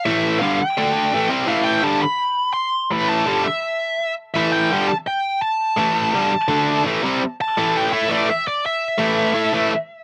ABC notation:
X:1
M:4/4
L:1/8
Q:1/4=167
K:Am
V:1 name="Lead electric guitar"
e2 f g4 z | f g a b3 c'2 | b a2 e4 z | e g2 a g2 a2- |
a6 z2 | z a2 g e d e d | e6 z2 |]
V:2 name="Distorted electric guitar" clef=bass
[A,,E,A,]2 [G,,D,G,] z [D,A,D]2 [A,,E,A,] [C,G,C] | [A,,E,A,]2 [G,,D,G,] z4 z | [A,,E,A,]2 [G,,D,G,] z4 z | [A,,E,A,]2 [G,,D,G,] z4 z |
[A,,E,A,]2 [G,,D,G,] z [D,A,D]2 [A,,E,A,] [C,G,C] | z2 [A,,E,A,]2 [A,EA] [A,,E,A,] z2 | z2 [A,,E,A,]2 [A,EA] [A,,E,A,] z2 |]